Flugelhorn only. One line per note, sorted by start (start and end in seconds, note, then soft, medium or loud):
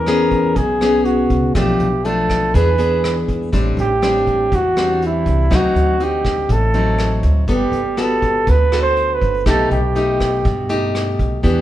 0.00 0.57 A#4 medium
0.56 1.07 G#4 medium
1.05 1.55 F#4 medium
1.56 2.07 G4 medium
2.05 2.56 A4 medium
2.55 3.29 B4 loud
3.80 4.57 G4 medium
4.55 5.03 F#4 medium
5.06 5.57 E4 medium
5.55 6.05 F#4 medium
6.04 6.54 G4 medium
6.52 7.25 A4 medium
7.52 8.02 G4 medium
8.00 8.51 A4 medium
8.49 8.81 B4 loud
8.82 9.16 C5 loud
9.14 9.47 B4 medium
9.47 9.70 A4 loud
9.72 11.16 G4 medium